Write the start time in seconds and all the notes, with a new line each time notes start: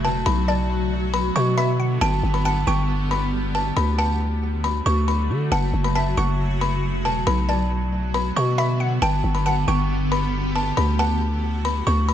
Already playing: C#3 F#3 A3 F#4 F#5
0.04 E1 A5
0.26 B1 D3 B3 B5
0.48 D5 A5
1.14 B5
1.36 B2 C#6
1.58 E5 B5
1.80 F#5
2.01 G1 G3 G4 G5 A5
2.23 G1
2.34 B5
2.45 F#5 A5
2.67 G1 G5 C#6
3.11 B5
3.55 A5
3.76 D2 D3 F#3 A3 F#4 B5
3.98 F#5 A5
4.64 B5
4.86 D2 C#6
5.08 B5
5.30 D3
5.52 F#1 C#3 F#4 F#5 A5
5.73 F#1
5.84 B5
5.95 E5 A5
6.17 F#1 F#5 C#6
6.61 B5
7.05 E1 A5
7.27 B1 D3 B3 F#4 B5
7.49 D5 A5
8.14 B5
8.36 B2 C#6
8.58 E5 B5
8.80 F#5
9.02 G1 G3 B3 G4 G5 A5
9.24 G1
9.35 B5
9.46 F#5 A5
9.68 G1 G5 C#6
10.12 B5
10.56 A5
10.77 D2 F#3 A3 F#4 B5
10.99 F#5 A5
11.65 B5
11.87 D2 C#6
12.09 B5